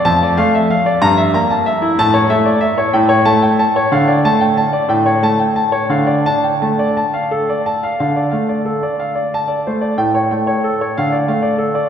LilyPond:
<<
  \new Staff \with { instrumentName = "Grand piano" } { \time 6/8 \key d \minor \tempo 4. = 61 a''16 d''16 f''16 e''16 f''16 d''16 bes''16 e''16 bes''16 a''16 e''16 e'16 | a''16 cis''16 e''16 d''16 e''16 cis''16 g''16 cis''16 a''16 g''16 a''16 cis''16 | f''16 d''16 a''16 g''16 a''16 d''16 g''16 cis''16 a''16 g''16 a''16 cis''16 | f''16 d''16 a''16 g''16 a''16 d''16 a''16 f''16 a'16 d''16 a''16 f''16 |
f''16 d''16 f''16 d''16 a'16 d''16 f''16 d''16 a''16 d''16 c''16 d''16 | g''16 cis''16 g''16 cis''16 a'16 cis''16 f''16 d''16 f''16 d''16 a'16 d''16 | }
  \new Staff \with { instrumentName = "Grand piano" } { \time 6/8 \key d \minor f,8 a8 r8 g,8 bes8 r8 | a,8 a8 r8 a,8 a8 r8 | d8 a8 r8 a,8 a8 r8 | d8 d'8 a8 r4. |
d8 a8 r4. a8 | a,8 a8 r8 d8 a8 r8 | }
>>